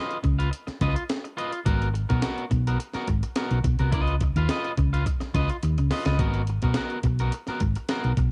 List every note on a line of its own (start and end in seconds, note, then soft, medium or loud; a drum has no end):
0.00 0.16 F4 medium
0.00 0.17 B4 medium
0.00 0.17 D#5 medium
0.11 closed hi-hat soft
0.23 0.49 C#2 medium
0.23 muted clean electric guitar stroke soft
0.23 kick medium
0.23 closed hi-hat medium
0.39 0.50 F4 medium
0.39 0.50 B4 medium
0.39 0.51 F5 medium
0.39 closed hi-hat medium
0.51 muted clean electric guitar stroke soft
0.51 closed hi-hat medium
0.67 muted clean electric guitar stroke soft
0.67 muted fingered electric bass stroke soft
0.67 snare soft
0.67 closed hi-hat soft
0.81 0.94 C#2 medium
0.81 1.03 F4 medium
0.81 0.96 B4 loud
0.81 0.95 D#5 medium
0.81 kick medium
0.81 closed hi-hat medium
0.96 muted clean electric guitar stroke soft
0.96 closed hi-hat medium
1.09 muted clean electric guitar stroke soft
1.09 snare medium
1.09 closed hi-hat medium
1.24 muted clean electric guitar stroke medium
1.24 closed hi-hat soft
1.37 1.59 F4 medium
1.37 1.52 B4 medium
1.37 1.51 D#5 medium
1.37 closed hi-hat medium
1.53 muted clean electric guitar stroke soft
1.53 closed hi-hat medium
1.65 2.04 G#1 loud
1.65 1.87 B3 medium
1.65 1.87 F#4 medium
1.65 1.88 A#4 loud
1.65 kick loud
1.65 closed hi-hat loud
1.82 closed hi-hat soft
1.94 muted clean electric guitar stroke soft
1.94 closed hi-hat medium
2.09 2.22 B1 medium
2.09 2.21 B3 medium
2.09 2.22 F#4 medium
2.09 2.22 A#4 medium
2.09 kick medium
2.09 closed hi-hat soft
2.22 2.44 B3 medium
2.22 2.44 F#4 medium
2.22 2.44 A#4 medium
2.22 snare medium
2.22 closed hi-hat loud
2.38 closed hi-hat soft
2.51 2.76 B1 loud
2.51 muted clean electric guitar stroke soft
2.51 kick medium
2.51 closed hi-hat medium
2.67 2.78 B3 medium
2.67 2.78 F#4 medium
2.67 2.79 A#4 medium
2.67 closed hi-hat medium
2.80 muted clean electric guitar stroke soft
2.80 closed hi-hat medium
2.94 3.07 B3 medium
2.94 3.08 F#4 medium
2.94 3.09 A#4 medium
2.94 muted fingered electric bass stroke soft
2.94 snare soft
2.94 closed hi-hat soft
3.08 3.21 G#1 loud
3.08 muted clean electric guitar stroke soft
3.08 kick medium
3.08 closed hi-hat medium
3.23 muted clean electric guitar stroke soft
3.23 closed hi-hat medium
3.36 3.58 B3 medium
3.36 3.58 F#4 medium
3.36 3.58 A#4 medium
3.36 snare medium
3.36 closed hi-hat medium
3.51 3.63 B1 medium
3.51 closed hi-hat soft
3.64 3.78 B1 medium
3.64 muted clean electric guitar stroke soft
3.64 kick medium
3.64 closed hi-hat medium
3.79 3.92 C2 medium
3.79 3.96 B3 soft
3.79 3.92 F#4 medium
3.79 3.92 A#4 medium
3.79 closed hi-hat medium
3.92 4.31 C#2 loud
3.92 4.14 F4 medium
3.92 4.14 B4 medium
3.92 4.14 D#5 loud
3.92 kick loud
3.92 closed hi-hat loud
4.07 closed hi-hat soft
4.21 muted clean electric guitar stroke soft
4.21 kick loud
4.21 closed hi-hat medium
4.36 4.48 D#2 medium
4.36 4.48 F4 medium
4.36 4.49 B4 medium
4.36 4.50 F5 medium
4.36 closed hi-hat medium
4.49 4.71 F4 medium
4.49 4.71 B4 loud
4.49 4.71 D#5 medium
4.49 snare loud
4.49 closed hi-hat loud
4.64 closed hi-hat soft
4.77 5.03 C#2 medium
4.77 muted clean electric guitar stroke soft
4.77 kick medium
4.77 closed hi-hat medium
4.93 5.05 F4 medium
4.93 5.05 B4 medium
4.93 5.07 F5 medium
4.93 closed hi-hat medium
5.06 muted clean electric guitar stroke soft
5.06 kick medium
5.06 closed hi-hat medium
5.20 muted clean electric guitar stroke soft
5.20 muted fingered electric bass stroke soft
5.20 snare soft
5.20 closed hi-hat soft
5.34 5.48 C#2 loud
5.34 5.56 F4 medium
5.34 5.50 B4 medium
5.34 5.49 D#5 medium
5.34 kick medium
5.34 closed hi-hat medium
5.49 muted clean electric guitar stroke soft
5.49 closed hi-hat medium
5.63 5.76 D#2 medium
5.63 muted clean electric guitar stroke soft
5.63 closed hi-hat medium
5.78 5.90 C#2 medium
5.78 muted clean electric guitar stroke soft
5.78 closed hi-hat soft
5.91 6.06 F4 medium
5.91 6.05 B4 medium
5.91 6.04 D#5 medium
5.91 snare medium
5.91 open hi-hat medium
6.05 6.18 C#2 medium
6.05 6.19 F4 soft
6.05 6.19 B4 medium
6.05 6.22 D#5 medium
6.05 snare medium
6.05 closed hi-hat medium
6.19 6.58 G#1 loud
6.19 6.41 B3 medium
6.19 6.41 F#4 medium
6.19 6.41 A#4 medium
6.19 kick loud
6.19 closed hi-hat medium
6.34 closed hi-hat soft
6.47 muted clean electric guitar stroke soft
6.47 closed hi-hat medium
6.62 6.75 B1 medium
6.62 6.74 B3 medium
6.62 6.75 F#4 medium
6.62 6.76 A#4 medium
6.62 kick loud
6.62 closed hi-hat medium
6.74 6.97 B3 medium
6.74 6.98 F#4 medium
6.74 6.98 A#4 medium
6.74 snare loud
6.74 closed hi-hat loud
6.90 closed hi-hat soft
7.03 7.29 B1 loud
7.03 muted clean electric guitar stroke soft
7.03 kick medium
7.03 closed hi-hat medium
7.19 7.33 B3 medium
7.19 7.33 F#4 medium
7.19 7.33 A#4 medium
7.19 closed hi-hat medium
7.32 muted clean electric guitar stroke soft
7.32 closed hi-hat medium
7.47 7.60 B3 medium
7.47 7.61 F#4 medium
7.47 7.62 A#4 medium
7.47 muted fingered electric bass stroke soft
7.47 snare soft
7.47 closed hi-hat soft
7.60 7.74 G#1 medium
7.60 muted clean electric guitar stroke soft
7.60 kick medium
7.60 closed hi-hat medium
7.75 muted clean electric guitar stroke soft
7.75 closed hi-hat medium
7.89 8.11 B3 medium
7.89 8.11 F#4 medium
7.89 8.12 A#4 medium
7.89 snare medium
7.89 closed hi-hat medium
8.04 8.16 B1 medium
8.04 closed hi-hat soft
8.17 8.31 B1 medium
8.17 muted clean electric guitar stroke soft
8.17 kick medium
8.17 closed hi-hat medium